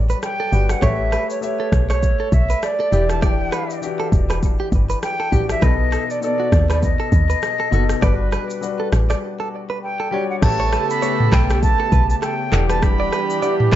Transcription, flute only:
0.23 0.72 G5 loud
0.70 0.84 F#5 medium
0.83 1.30 E5 medium
1.30 1.42 C#5 medium
1.43 1.87 C#5 medium
1.91 2.35 C#5 medium
2.33 2.65 E5 loud
2.63 3.12 D5 loud
3.10 3.23 A5 loud
3.23 3.79 G5 loud
5.03 5.47 G5 loud
5.50 5.64 E5 loud
5.63 6.12 D#5 loud
6.10 6.22 D5 medium
6.23 6.67 D5 loud
6.70 6.82 D5 medium
6.83 8.04 D#5 loud
8.03 8.93 B4 medium
9.83 10.27 G5 medium
10.30 10.36 F#5 medium
10.43 10.87 A5 loud
10.90 11.34 B5 loud
11.33 11.62 G5 loud
11.63 12.07 A5 loud
12.10 12.16 A5 medium
12.22 12.67 G5 loud
12.70 12.84 A5 loud
12.82 13.76 B5 loud

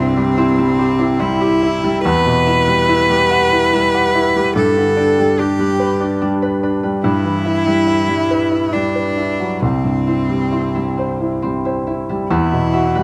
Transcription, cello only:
0.00 1.21 C4 loud
1.20 2.04 E4 loud
2.05 4.52 B4 loud
4.57 5.41 A4 loud
5.40 6.22 G4 loud
7.04 8.74 E4 loud
8.73 9.63 D4 medium
9.62 11.43 C4 medium
12.31 13.03 E4 medium

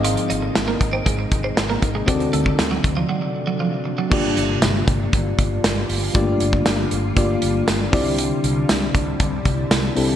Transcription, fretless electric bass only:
0.00 0.16 G#1 medium
0.30 0.49 G#1 medium
0.56 0.74 G#1 loud
0.81 0.99 G#1 loud
1.06 1.25 G#1 medium
1.32 1.50 G#1 loud
1.57 1.76 G#1 loud
1.82 2.01 G#1 medium
2.08 2.26 D2 loud
2.33 2.52 D2 loud
2.59 2.77 D2 loud
2.84 3.03 D2 loud
4.12 4.30 G1 loud
4.37 4.55 G1 loud
4.62 4.81 G1 loud
4.88 5.06 G1 loud
5.13 5.31 G1 loud
5.39 5.57 G1 loud
5.64 5.82 G1 loud
5.89 6.08 G1 loud
6.15 6.33 G1 loud
6.41 6.59 G1 loud
6.66 6.84 G1 loud
6.92 7.10 G1 loud
7.17 7.35 G1 loud
7.43 7.61 G1 loud
7.68 7.86 G1 loud
7.93 8.30 C2 loud
8.44 8.62 C2 loud
8.70 8.88 C2 loud
8.95 9.13 C2 loud
9.20 9.38 C2 loud
9.46 9.64 C2 loud
9.71 9.89 C2 loud
9.97 10.15 C2 loud

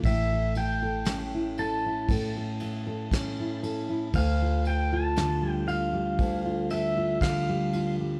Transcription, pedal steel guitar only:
0.05 0.57 E5 medium
0.57 1.61 G5 medium
1.59 3.59 A5 medium
4.16 4.67 F5 medium
4.67 4.92 G5 medium
4.94 5.51 A5 medium
5.51 5.71 G5 medium
5.68 6.73 F5 medium
6.71 7.22 E5 medium
7.22 7.95 F5 medium

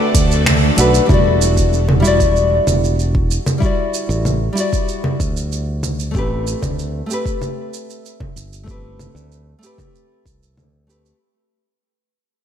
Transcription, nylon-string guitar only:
0.00 0.73 A3 medium
0.00 0.74 D4 medium
0.00 0.75 F#4 medium
0.00 0.76 B4 loud
0.76 1.05 A3 medium
0.76 1.05 D4 medium
0.76 1.06 F#4 medium
0.80 1.07 B4 loud
1.06 1.99 G3 medium
1.06 2.00 E4 medium
1.11 2.01 F#4 medium
1.11 2.03 D5 loud
2.00 3.56 G3 medium
2.00 3.57 E4 medium
2.05 3.59 F#4 medium
2.05 3.60 D5 loud
3.58 4.51 G3 medium
3.58 4.52 E4 medium
3.63 4.53 F#4 medium
3.63 4.55 D5 medium
4.53 6.09 G3 medium
4.53 6.10 E4 medium
4.58 6.11 F#4 medium
4.58 6.12 D5 loud
6.11 7.04 A3 medium
6.11 7.05 C4 medium
6.16 7.06 G4 medium
6.16 7.07 B4 medium
7.06 8.62 A3 medium
7.06 8.63 C4 medium
7.11 8.64 G4 medium
7.11 8.66 B4 loud
8.63 9.56 A3 medium
8.63 9.58 C4 medium
8.69 9.59 G4 medium
8.69 9.60 B4 medium
9.59 10.83 A3 medium
9.59 10.85 C4 medium
9.64 10.86 G4 medium
9.64 10.87 B4 medium
10.87 11.15 A3 medium
10.87 11.16 C4 medium
10.87 11.17 G4 medium
10.87 11.17 B4 medium

